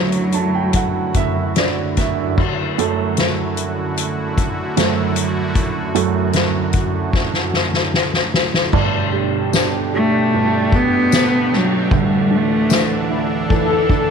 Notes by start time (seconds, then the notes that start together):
Already playing: F#2 D3 F#3 A3 E4 F#4
0.12 closed hi-hat
0.32 D3 A5, closed hi-hat
0.55 G5
0.73 F#3 F#5, kick, closed hi-hat
1.14 F#2 E5, kick, closed hi-hat
1.56 D3 D5, snare, closed hi-hat
1.97 F#2 E5, kick, snare, closed hi-hat
2.38 F#2 D3 A3 E4 F#4, kick, crash
2.78 F#2 F#3 A3, closed hi-hat
3.17 snare, closed hi-hat
3.57 closed hi-hat
3.97 closed hi-hat
4.38 kick, closed hi-hat
4.77 F#2 F#3 A3, snare, closed hi-hat
5.16 closed hi-hat
5.55 kick, closed hi-hat
5.95 F#2 F#3 A3, closed hi-hat
6.33 snare, closed hi-hat
6.73 kick, closed hi-hat
7.13 kick, snare
7.33 snare
7.54 snare
7.74 snare
7.94 snare
8.14 snare
8.34 snare
8.54 snare
8.73 G1 G2 B2 A3 D4 G5, kick, crash
9.13 G3, ride
9.53 D3, snare, ride, tambourine
9.93 G3 A3, ride
10.32 G2, ride
10.72 A3 B3, kick, ride
11.12 D3, snare, ride, tambourine
11.52 B3, snare, ride
11.57 F#3
11.90 D1 D2 E3 D4 A4, kick
11.96 G3
12.31 D3, ride
12.35 A3
12.70 E3, snare, ride, tambourine
13.09 D3 E4, ride
13.50 E3 A4, kick, ride
13.89 D3, kick, ride